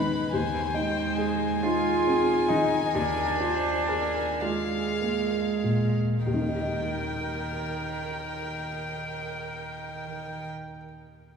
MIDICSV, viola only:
0, 0, Header, 1, 2, 480
1, 0, Start_track
1, 0, Key_signature, -3, "major"
1, 0, Tempo, 814111
1, 197, Time_signature, 6, 3, 24, 8
1, 691, Tempo, 882353
1, 1651, Tempo, 952381
1, 2131, Tempo, 1104972
1, 2611, Tempo, 1255230
1, 5048, End_track
2, 0, Start_track
2, 0, Title_t, "Viola"
2, 0, Program_c, 0, 41
2, 0, Note_on_c, 0, 71, 48
2, 202, Note_on_c, 0, 72, 46
2, 211, Note_off_c, 0, 71, 0
2, 942, Note_on_c, 0, 68, 49
2, 950, Note_off_c, 0, 72, 0
2, 1657, Note_on_c, 0, 70, 43
2, 1664, Note_off_c, 0, 68, 0
2, 1887, Note_off_c, 0, 70, 0
2, 1891, Note_on_c, 0, 72, 49
2, 2130, Note_on_c, 0, 70, 44
2, 2137, Note_off_c, 0, 72, 0
2, 2359, Note_on_c, 0, 68, 38
2, 2366, Note_off_c, 0, 70, 0
2, 2969, Note_off_c, 0, 68, 0
2, 3096, Note_on_c, 0, 70, 35
2, 4712, Note_off_c, 0, 70, 0
2, 5048, End_track
0, 0, End_of_file